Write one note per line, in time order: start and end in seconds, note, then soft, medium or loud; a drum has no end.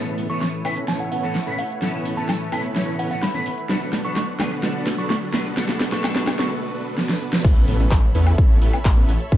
0.00 0.27 A2 medium
0.00 0.27 E3 medium
0.00 3.66 A3 medium
0.00 0.27 B3 medium
0.00 0.27 C#4 medium
0.00 0.27 E4 medium
0.00 3.66 E4 medium
0.00 0.27 A4 medium
0.00 0.27 A4 loud
0.00 0.27 B4 medium
0.00 5.53 B4 medium
0.00 3.66 C#5 medium
0.00 riser medium
0.18 open hi-hat loud
0.18 shaker medium
0.29 0.62 A2 medium
0.29 0.62 E3 medium
0.29 0.46 B3 medium
0.29 0.62 B3 medium
0.29 0.46 C#4 medium
0.29 0.62 C#4 medium
0.29 0.46 E4 medium
0.29 0.46 A4 medium
0.29 0.62 A4 loud
0.29 0.46 B4 medium
0.29 0.37 C#6 medium
0.29 closed hi-hat medium
0.29 shaker soft
0.41 0.49 C#6 medium
0.41 snare soft
0.41 closed hi-hat medium
0.41 shaker soft
0.65 0.77 A2 medium
0.65 0.77 E3 medium
0.65 0.85 B3 medium
0.65 0.77 B3 medium
0.65 0.85 C#4 medium
0.65 0.78 C#4 medium
0.65 0.85 E4 medium
0.65 0.85 A4 medium
0.65 0.85 B4 loud
0.65 0.78 B4 loud
0.65 open hi-hat loud
0.65 high woodblock medium
0.65 shaker medium
0.77 closed hi-hat medium
0.77 shaker soft
0.88 1.20 A2 medium
0.88 1.21 E3 medium
0.88 1.09 B3 medium
0.88 1.21 B3 medium
0.88 1.09 C#4 medium
0.88 1.21 C#4 medium
0.88 1.09 E4 medium
0.88 1.09 A4 medium
0.88 1.09 C#5 loud
0.88 1.21 C#5 medium
0.88 0.98 A5 medium
0.88 snare medium
0.88 closed hi-hat medium
0.88 shaker soft
1.00 1.07 F#5 medium
1.12 1.28 B3 medium
1.12 1.28 C#4 medium
1.12 1.28 E4 medium
1.12 1.28 A4 medium
1.12 1.28 B4 medium
1.12 1.19 F#5 medium
1.12 open hi-hat loud
1.12 shaker medium
1.23 1.36 A2 medium
1.23 1.36 E3 medium
1.23 1.36 B3 medium
1.23 1.36 C#4 medium
1.23 1.36 A4 loud
1.23 closed hi-hat medium
1.23 shaker soft
1.35 snare medium
1.35 closed hi-hat medium
1.35 shaker soft
1.47 1.59 A2 medium
1.47 1.59 E3 medium
1.47 1.63 B3 medium
1.47 1.59 B3 medium
1.47 1.63 C#4 medium
1.47 1.60 C#4 medium
1.47 1.63 E4 medium
1.47 1.63 A4 medium
1.47 1.63 B4 medium
1.47 1.60 B4 medium
1.47 closed hi-hat soft
1.59 1.79 F#5 medium
1.59 open hi-hat loud
1.59 shaker medium
1.70 closed hi-hat medium
1.70 shaker soft
1.82 2.14 A2 medium
1.82 2.14 E3 medium
1.82 2.14 B3 medium
1.82 2.14 C#4 medium
1.82 2.15 C#4 medium
1.82 2.14 E4 medium
1.82 2.14 A4 medium
1.82 2.15 A4 loud
1.82 2.14 B4 medium
1.82 snare medium
1.82 closed hi-hat medium
1.82 shaker soft
1.94 closed hi-hat soft
2.05 open hi-hat loud
2.05 shaker medium
2.17 2.49 A2 medium
2.17 2.49 E3 medium
2.17 2.33 B3 medium
2.17 2.50 B3 medium
2.17 2.33 C#4 medium
2.17 2.50 C#4 medium
2.17 2.33 E4 medium
2.17 2.33 A4 medium
2.17 2.50 A4 medium
2.17 2.33 B4 medium
2.17 2.64 A5 medium
2.17 closed hi-hat medium
2.17 shaker soft
2.29 snare medium
2.29 closed hi-hat medium
2.29 high woodblock medium
2.29 shaker soft
2.52 2.64 A2 medium
2.52 2.65 E3 medium
2.52 2.73 B3 medium
2.52 2.65 B3 medium
2.52 2.73 C#4 medium
2.52 2.65 C#4 medium
2.52 2.73 E4 medium
2.52 2.73 A4 medium
2.52 2.73 B4 loud
2.52 2.65 B4 loud
2.52 open hi-hat loud
2.52 high woodblock medium
2.52 shaker medium
2.64 closed hi-hat medium
2.64 shaker soft
2.75 3.08 A2 medium
2.75 3.08 E3 medium
2.75 2.96 B3 medium
2.75 3.08 B3 medium
2.75 3.08 C#4 medium
2.75 2.96 C#4 medium
2.75 2.96 E4 medium
2.75 2.96 A4 medium
2.75 2.96 C#5 loud
2.75 3.08 C#5 medium
2.75 snare medium
2.75 closed hi-hat medium
2.75 shaker soft
2.99 3.15 B3 medium
2.99 3.15 C#4 medium
2.99 3.15 E4 medium
2.99 3.15 A4 medium
2.99 3.15 B4 medium
2.99 3.07 F#5 medium
2.99 open hi-hat loud
2.99 shaker medium
3.10 3.23 A2 medium
3.10 3.23 E3 medium
3.10 3.23 B3 medium
3.10 3.23 C#4 medium
3.10 3.24 A4 loud
3.10 3.18 F#5 medium
3.10 closed hi-hat medium
3.10 shaker soft
3.22 3.69 B5 medium
3.22 snare medium
3.22 closed hi-hat medium
3.22 shaker soft
3.34 3.47 A2 medium
3.34 3.47 E3 medium
3.34 3.51 B3 medium
3.34 3.47 B3 medium
3.34 3.51 C#4 medium
3.34 3.47 C#4 medium
3.34 3.50 E4 medium
3.34 3.50 A4 medium
3.34 3.51 B4 medium
3.34 3.47 B4 medium
3.34 closed hi-hat soft
3.46 open hi-hat loud
3.46 shaker medium
3.58 closed hi-hat medium
3.58 shaker soft
3.69 6.48 D3 medium
3.69 4.02 F#3 medium
3.69 4.02 B3 medium
3.69 6.48 D4 medium
3.69 4.02 D4 medium
3.69 4.02 F#4 medium
3.69 4.02 A4 medium
3.69 4.02 A4 loud
3.69 4.02 B4 medium
3.69 6.48 F#5 medium
3.69 snare medium
3.69 closed hi-hat medium
3.69 shaker soft
3.93 snare medium
3.93 open hi-hat loud
3.93 shaker medium
4.04 4.37 F#3 medium
4.04 4.37 B3 medium
4.04 4.21 B3 medium
4.04 4.37 D4 medium
4.04 4.21 D4 medium
4.04 4.21 F#4 medium
4.04 4.21 A4 medium
4.04 4.37 A4 medium
4.04 4.21 B4 medium
4.04 4.12 C#6 medium
4.04 closed hi-hat soft
4.04 shaker soft
4.16 4.24 C#6 medium
4.16 snare medium
4.16 closed hi-hat medium
4.16 shaker soft
4.39 4.52 F#3 medium
4.39 4.52 B3 medium
4.39 4.60 B3 medium
4.39 4.52 D4 medium
4.39 4.60 D4 medium
4.39 4.60 F#4 medium
4.39 4.60 A4 medium
4.39 4.60 B4 loud
4.39 4.52 B4 medium
4.39 snare medium
4.39 open hi-hat loud
4.39 high woodblock medium
4.39 shaker medium
4.51 closed hi-hat soft
4.51 shaker soft
4.62 4.95 F#3 medium
4.62 4.95 B3 medium
4.62 4.96 B3 medium
4.62 4.96 D4 medium
4.62 4.96 F#4 medium
4.62 4.96 A4 medium
4.62 4.96 B4 medium
4.62 snare medium
4.62 closed hi-hat medium
4.62 shaker soft
4.87 snare medium
4.87 open hi-hat loud
4.87 shaker medium
4.98 5.30 F#3 medium
4.98 5.31 B3 medium
4.98 5.15 B3 medium
4.98 5.15 D4 medium
4.98 5.31 D4 medium
4.98 5.15 F#4 medium
4.98 5.15 A4 medium
4.98 5.31 A4 medium
4.98 5.15 B4 medium
4.98 5.06 C#6 medium
4.98 closed hi-hat medium
4.98 shaker soft
5.10 5.18 C#6 medium
5.10 snare medium
5.10 closed hi-hat medium
5.10 shaker soft
5.22 closed hi-hat soft
5.33 5.46 F#3 medium
5.33 5.54 B3 loud
5.33 5.46 B3 medium
5.33 5.54 D4 medium
5.33 5.46 D4 medium
5.33 5.54 F#4 medium
5.33 5.54 A4 medium
5.33 5.54 B4 loud
5.33 5.46 B4 medium
5.33 snare medium
5.33 open hi-hat loud
5.33 shaker medium
5.45 closed hi-hat soft
5.45 shaker soft
5.56 5.89 F#3 medium
5.56 5.89 B3 medium
5.56 5.89 D4 medium
5.56 5.90 D4 medium
5.56 5.89 F#4 medium
5.56 6.50 A4 medium
5.56 5.89 A4 medium
5.56 5.90 A4 loud
5.56 5.89 B4 medium
5.56 snare medium
5.56 closed hi-hat medium
5.56 shaker soft
5.69 snare medium
5.69 closed hi-hat soft
5.80 snare medium
5.80 open hi-hat loud
5.80 shaker medium
5.92 6.02 F#3 medium
5.92 6.02 B3 medium
5.92 6.02 D4 medium
5.92 6.02 F#4 medium
5.92 6.02 A4 medium
5.92 6.02 A4 loud
5.92 6.02 B4 medium
5.92 6.00 C#6 medium
5.92 snare medium
5.92 closed hi-hat soft
5.92 shaker soft
6.03 6.36 F#3 medium
6.03 6.36 B3 medium
6.03 6.36 D4 medium
6.03 6.36 F#4 medium
6.03 6.36 A4 medium
6.03 6.37 A4 medium
6.03 6.36 B4 medium
6.03 snare medium
6.03 closed hi-hat medium
6.03 high woodblock medium
6.03 shaker soft
6.16 snare medium
6.27 snare loud
6.27 open hi-hat loud
6.27 high woodblock medium
6.27 shaker medium
6.38 6.49 F#3 medium
6.38 6.49 B3 medium
6.38 6.49 D4 medium
6.38 6.49 F#4 medium
6.38 6.49 A4 medium
6.38 6.49 B4 medium
6.38 6.47 C#6 medium
6.38 snare medium
6.38 closed hi-hat medium
6.38 shaker soft
6.51 6.72 B3 medium
6.51 6.72 D4 medium
6.51 6.72 F#4 medium
6.51 6.72 A4 medium
6.51 6.72 B4 medium
6.74 6.96 B3 medium
6.74 6.96 D4 medium
6.74 6.96 F#4 medium
6.74 6.96 A4 medium
6.74 6.96 B4 medium
6.98 7.19 B3 medium
6.98 7.19 D4 medium
6.98 7.19 F#4 medium
6.98 7.19 A4 medium
6.98 7.19 B4 medium
6.98 snare medium
7.09 snare medium
7.21 7.43 B3 medium
7.21 7.43 D4 medium
7.21 7.43 F#4 medium
7.21 7.43 A4 medium
7.21 7.43 B4 medium
7.33 snare medium
7.45 7.63 A1 loud
7.45 7.77 B3 medium
7.45 7.77 C#4 medium
7.45 7.77 E4 medium
7.45 7.77 A4 medium
7.45 9.37 A4 medium
7.45 7.77 B4 medium
7.45 9.37 C#5 medium
7.45 9.37 E5 medium
7.45 9.30 B5 medium
7.45 kick loud
7.45 closed hi-hat medium
7.45 crash loud
7.45 impact medium
7.45 shaker soft
7.56 closed hi-hat soft
7.68 7.86 A1 medium
7.68 open hi-hat loud
7.68 shaker medium
7.80 7.96 B3 medium
7.80 7.96 C#4 medium
7.80 7.96 E4 medium
7.80 7.96 A4 medium
7.80 7.96 B4 medium
7.80 closed hi-hat medium
7.80 shaker soft
7.91 8.09 A1 medium
7.91 kick loud
7.91 clap loud
7.91 closed hi-hat medium
7.91 shaker soft
8.03 closed hi-hat soft
8.15 8.33 E2 medium
8.15 8.36 B3 loud
8.15 8.36 C#4 medium
8.15 8.36 E4 medium
8.15 8.36 A4 medium
8.15 8.36 B4 loud
8.15 open hi-hat loud
8.15 shaker medium
8.27 closed hi-hat medium
8.27 high woodblock medium
8.27 shaker soft
8.38 8.56 A1 medium
8.38 8.59 B3 medium
8.38 8.59 C#4 medium
8.38 8.59 E4 medium
8.38 8.59 A4 medium
8.38 8.59 C#5 loud
8.38 kick loud
8.38 closed hi-hat medium
8.38 shaker soft
8.50 closed hi-hat soft
8.62 8.71 A1 medium
8.62 8.78 B3 medium
8.62 8.78 C#4 medium
8.62 8.78 E4 medium
8.62 8.78 A4 medium
8.62 8.78 B4 medium
8.62 open hi-hat loud
8.62 shaker medium
8.73 closed hi-hat medium
8.73 high woodblock medium
8.73 shaker soft
8.85 9.03 A1 medium
8.85 kick loud
8.85 clap loud
8.85 closed hi-hat medium
8.85 shaker soft
8.97 9.13 B3 medium
8.97 9.13 C#4 medium
8.97 9.13 E4 medium
8.97 9.13 A4 medium
8.97 9.13 B4 loud
8.97 closed hi-hat soft
9.09 9.18 A1 medium
9.09 open hi-hat loud
9.09 shaker medium
9.20 closed hi-hat medium
9.20 shaker soft
9.32 9.37 A1 loud
9.32 9.37 B3 medium
9.32 9.37 C#4 medium
9.32 9.37 E4 medium
9.32 9.37 A4 medium
9.32 9.37 B4 medium
9.32 9.37 C#6 medium
9.32 kick loud
9.32 closed hi-hat medium
9.32 shaker soft